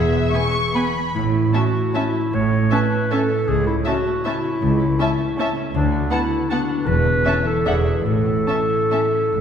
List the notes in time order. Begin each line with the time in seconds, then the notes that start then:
Already playing: E1 E2 E3 B3 G#4 B4 E5
0.12 B4
0.32 B3 G#4 G#5 C#6
0.53 B3
0.76 B3 B4 G#5 B5
0.95 B3
1.15 A1 A2 E4
1.34 C#4
1.53 C#4 F#4 A4 E5 A5
1.75 A3
1.94 C#4 E4 E5 A5
2.14 A3
2.33 A1 A2 C#5
2.52 C#4
2.71 C#4 A4 B4 E5 A5
2.91 A3
3.10 C#4 A4 E5 A5
3.30 A3
3.48 C#2 C#3 G#4
3.66 E4 A4
3.85 C#4 F#4 E5 A5
4.06 A3
4.25 C#4 E4 A4 E5 A5
4.44 C#4
4.61 C#2 C#3
4.80 A4
4.99 C#4 E5 A5
5.18 A3
5.38 C#4 A4 E5 A5
5.56 C#4
5.73 D2 D3 D4
5.92 F#4
6.11 B3 E4 A4 F#5 A5
6.31 B3
6.50 B3 D4 F#4 F#5 A5
6.69 B3
6.86 E1 E2 E3 B4
7.05 A4
7.25 C#4 C#5 E5 A5
7.46 E4 A4
7.65 E1 E2 E3 D4 G#4 E5 F#5
7.86 F#4 B4
8.05 A1 A2 A4
8.26 E4
8.47 C#4 A4 E5 A5
8.69 C#4
8.90 C#4 E4 E5 A5
9.13 C#4
9.32 A1 A2